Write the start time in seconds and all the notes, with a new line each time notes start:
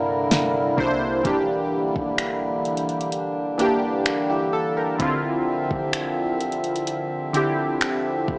Already playing: G2 D3 G3 A#3 E4 A#4
0.31 snare, closed hi-hat
0.76 C2 C3 A#3 D4 E4 C5, kick
1.23 E1 D3 E3 G3 A#3 D4 E4 G4, kick, closed hi-hat
1.96 E1, kick
2.18 finger snap, closed hi-hat
2.65 closed hi-hat
2.77 closed hi-hat
2.89 closed hi-hat
3.01 closed hi-hat
3.12 D4, closed hi-hat
3.58 E3 A#3 D4 G4, closed hi-hat
4.06 G1, finger snap, closed hi-hat
4.30 E4 G4
4.53 A4
4.77 G4 A#4
4.99 D1 D3 F3 C4 E4 F4 E5, kick, closed hi-hat
5.71 D1, kick
5.93 finger snap, closed hi-hat
6.41 closed hi-hat
6.52 closed hi-hat
6.64 closed hi-hat
6.76 closed hi-hat
6.87 closed hi-hat
7.33 D3 C4 E4 G4, closed hi-hat
7.81 finger snap, closed hi-hat
8.28 D1, kick